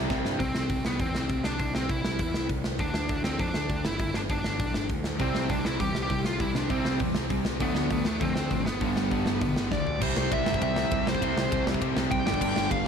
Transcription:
Already playing: overdriven electric guitar C3
0.10 picked electric bass C2, overdriven electric guitar C3 G3 C4 E4 G4, kick, snare
0.25 picked electric bass G2, snare
0.40 picked electric bass C2, lead electric guitar C4, kick, open hi-hat
0.55 picked electric bass C2, snare
0.70 picked electric bass C2, kick, open hi-hat
0.85 picked electric bass C2, lead electric guitar B3, snare
1.00 picked electric bass E2, lead electric guitar C4, kick, open hi-hat
1.15 picked electric bass C2, snare
1.29 picked electric bass C2, kick, open hi-hat
1.44 lead electric guitar D4, snare
1.59 picked electric bass C2, kick, open hi-hat
1.75 picked electric bass C2, lead electric guitar C4, snare
1.89 picked electric bass C2, lead electric guitar E4, kick, open hi-hat
2.04 picked electric bass C2, snare
2.19 picked electric bass E2, kick, open hi-hat
2.34 picked electric bass C2, snare
2.49 picked electric bass C2, kick, open hi-hat
2.64 snare
2.79 picked electric bass D2, lead electric guitar D4, kick, open hi-hat
2.94 picked electric bass D2, snare
3.09 picked electric bass D2, kick, open hi-hat
3.24 picked electric bass D2, lead electric guitar C4, snare
3.39 picked electric bass F2, lead electric guitar D4, kick, open hi-hat
3.54 picked electric bass D2, snare
3.70 picked electric bass D2, kick, open hi-hat
3.85 picked electric bass G1, lead electric guitar E4, snare
3.99 picked electric bass G1, lead electric guitar E4, kick, open hi-hat
4.14 picked electric bass G1, lead electric guitar D4, snare
4.29 picked electric bass G1, lead electric guitar D4, kick, open hi-hat
4.44 picked electric bass G1, snare
4.60 picked electric bass B1, kick, open hi-hat
4.74 picked electric bass G1, snare
4.89 picked electric bass D2, kick, open hi-hat
5.04 snare
5.19 picked electric bass C2, overdriven electric guitar C3 G3 C4, lead electric guitar C4, kick, open hi-hat
5.34 picked electric bass C2, snare
5.49 picked electric bass C2, overdriven electric guitar C3 G3 C4, lead electric guitar D4, kick, open hi-hat
5.65 picked electric bass C2, lead electric guitar E4, snare
5.79 picked electric bass E2, overdriven electric guitar C3 G3 C4, lead electric guitar G4, kick, open hi-hat
5.94 picked electric bass C2, snare
6.03 lead electric guitar G4
6.09 picked electric bass C2, overdriven electric guitar C3 G3 C4, kick, open hi-hat
6.25 lead electric guitar F4, snare
6.39 picked electric bass C2, overdriven electric guitar C3 G3 C4, lead electric guitar E4, kick, open hi-hat
6.55 picked electric bass C2, lead electric guitar D4, snare
6.69 picked electric bass C2, overdriven electric guitar C3 G3 C4, lead electric guitar C4, kick, open hi-hat
6.85 picked electric bass C2, snare
6.99 picked electric bass E2, overdriven electric guitar C3 G3 C4, kick, open hi-hat
7.15 picked electric bass C2, snare
7.30 picked electric bass C2, overdriven electric guitar C3 G3 C4, kick, open hi-hat
7.45 snare
7.59 picked electric bass D2, overdriven electric guitar D3 F3 A3 D4, lead electric guitar B3, kick, open hi-hat
7.75 picked electric bass D2, snare
7.90 picked electric bass D2, overdriven electric guitar D3 F3 A3 D4, lead electric guitar B3, kick, open hi-hat
8.05 picked electric bass D2, lead electric guitar A3, snare
8.21 picked electric bass F2, overdriven electric guitar D3 F3 A3 D4, lead electric guitar C4, kick, open hi-hat
8.36 picked electric bass D2, snare
8.51 picked electric bass A1, overdriven electric guitar D3 F3 A3 D4, kick, open hi-hat
8.66 picked electric bass G1, lead electric guitar B3, snare
8.81 picked electric bass G1, overdriven electric guitar G2 D3 G3, kick, open hi-hat
8.96 picked electric bass G1, snare
9.11 picked electric bass G1, overdriven electric guitar G2 D3 G3, kick, open hi-hat
9.26 picked electric bass G1, snare
9.41 picked electric bass B1, overdriven electric guitar G2 D3 G3, kick, open hi-hat
9.56 picked electric bass G1, snare
9.71 picked electric bass D2, overdriven electric guitar G2 D3 G3, lead electric guitar D5, kick, snare
9.87 floor tom
10.01 picked electric bass C2, overdriven electric guitar C3 G3 C4 E4, lead electric guitar C5, kick, crash
10.17 picked electric bass C2, snare
10.31 picked electric bass C2, overdriven electric guitar C3 G3 C4, lead electric guitar E5, kick, ride
10.46 picked electric bass G1, snare
10.54 kick
10.62 picked electric bass C2, overdriven electric guitar C3 G3 C4, lead electric guitar E5, kick, ride
10.76 snare
10.91 picked electric bass C2, overdriven electric guitar C3 G3 C4, kick, ride
11.07 picked electric bass C2, lead electric guitar C5, snare
11.15 kick
11.21 picked electric bass C2, overdriven electric guitar C3 G3 C4 E4, kick, ride
11.37 picked electric bass C2, snare
11.51 picked electric bass C2, overdriven electric guitar C3 G3 C4, kick, ride
11.67 picked electric bass C2, snare
11.74 kick
11.81 picked electric bass C2, overdriven electric guitar C3 G3 C4, kick, ride
11.96 picked electric bass C2, snare
12.11 picked electric bass C2, overdriven electric guitar C3 G3 C4, lead electric guitar G5, kick, ride
12.25 picked electric bass G1, overdriven electric guitar G2 D3 G3 B3 D4, lead electric guitar G5, snare
12.34 kick
12.41 picked electric bass G1, overdriven electric guitar G2 D3 G3, lead electric guitar G5, kick, crash
12.56 picked electric bass G1, snare
12.71 picked electric bass G1, overdriven electric guitar G2 D3 G3, lead electric guitar F5, kick, ride

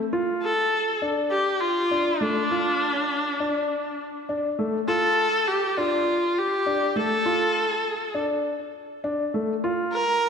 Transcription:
0.13 grand piano F4
0.43 viola A4
1.02 grand piano D4
1.31 viola G4
1.60 viola F4
1.91 grand piano D4
2.21 grand piano A3, viola D4
2.51 grand piano F4
3.40 grand piano D4
4.29 grand piano D4
4.59 grand piano A3
4.88 grand piano F4, viola A4
5.48 viola G4
5.77 grand piano D4, viola F4
6.38 viola G4
6.66 grand piano D4
6.96 grand piano A3, viola A4
7.26 grand piano F4
8.14 grand piano D4
9.04 grand piano D4
9.34 grand piano A3
9.64 grand piano F4
9.93 viola A#4

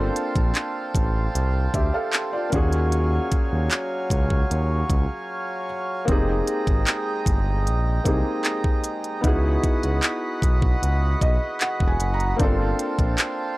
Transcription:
Already playing: felt piano A#3 C4 D4 F4 A4, harmonium C5 F5 G5 A5
0.16 closed hi-hat
0.36 analog synth bass A#1, kick, closed hi-hat
0.55 clap, closed hi-hat
0.95 analog synth bass A1, kick, closed hi-hat
1.35 analog synth bass C2, closed hi-hat
1.74 analog synth bass D2, felt piano G4 E5, kick, closed hi-hat
1.94 felt piano A4 F5
2.13 clap, closed hi-hat
2.33 felt piano F4 D5
2.50 analog synth bass D#2, harmonium F#3 C#5 F5 G#5, felt piano A#3 C#4 F4, kick, closed hi-hat, open hi-hat
2.55 felt piano F#4 G#4
2.73 closed hi-hat
2.92 closed hi-hat
3.32 kick, closed hi-hat
3.52 analog synth bass D#2
3.71 clap, closed hi-hat
4.10 analog synth bass C#2, kick, closed hi-hat
4.30 kick
4.51 analog synth bass D#2, closed hi-hat
4.90 analog synth bass C#2, kick, closed hi-hat
6.05 analog synth bass F1, harmonium G#3 D#5 G5 A#5, felt piano A#3 C4 D#4, kick, closed hi-hat
6.10 felt piano G4 G#4
6.47 closed hi-hat
6.67 analog synth bass G#1, kick, closed hi-hat
6.87 clap, closed hi-hat
7.26 analog synth bass G1, kick, closed hi-hat
7.67 analog synth bass A#1, closed hi-hat
8.04 analog synth bass C2, felt piano A#3 C4 D#4 G4 G#4, kick, closed hi-hat
8.45 clap, closed hi-hat
8.64 kick
8.84 closed hi-hat, open hi-hat
9.04 closed hi-hat
9.21 analog synth bass C#2, felt piano B3 D#4 E4, harmonium F#4 F#5 B5, kick, closed hi-hat
9.26 felt piano F#4 G#4
9.64 kick, closed hi-hat
9.83 analog synth bass C#2, closed hi-hat
10.02 clap, closed hi-hat
10.42 analog synth bass B1, kick, closed hi-hat
10.62 kick
10.83 analog synth bass C#2, closed hi-hat
11.21 analog synth bass B1, felt piano D#5, kick, closed hi-hat
11.61 felt piano F#5, clap, closed hi-hat
11.80 analog synth bass E1, kick
11.87 felt piano G#5
12.00 analog synth bass F#1, closed hi-hat, open hi-hat
12.14 felt piano A#5
12.20 closed hi-hat
12.36 analog synth bass G1, felt piano A#3 C4 D4, harmonium C5 F5 G5 A5, kick, closed hi-hat
12.41 felt piano F4 A4
12.79 closed hi-hat
12.99 analog synth bass A#1, kick, closed hi-hat
13.18 clap, closed hi-hat

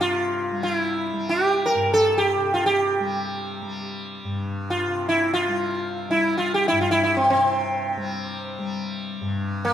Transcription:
Already playing: tanpura G2 C3 G3
0.01 sitar F4
0.52 tanpura G3
0.63 sitar F4
0.75 sitar E4
1.13 tanpura G3
1.29 sitar G4
1.66 sitar A#4
1.75 tanpura G2
1.94 sitar A4
2.18 sitar G4
2.37 tanpura C3
2.54 sitar F4
2.66 sitar G4
3.00 tanpura G3
3.62 tanpura G3
4.24 tanpura G2
4.70 sitar F4
4.87 tanpura C3
5.09 sitar E4
5.34 sitar F4
5.48 tanpura G3
6.09 tanpura G3, sitar E4
6.38 sitar F4
6.54 sitar G4
6.68 tanpura G2, sitar E4
6.81 sitar F4
6.91 sitar E4
7.04 sitar E4
7.17 sitar C4
7.30 sitar C4
7.35 tanpura C3
7.97 tanpura G3
8.59 tanpura G3
9.21 tanpura G2
9.65 sitar A#3

